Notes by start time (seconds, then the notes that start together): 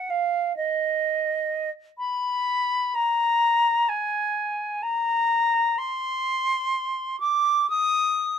Already playing: F#5
0.10 F5
0.56 D#5
1.98 B5
2.95 A#5
3.88 G#5
4.82 A#5
5.78 C6
7.20 D6
7.69 D#6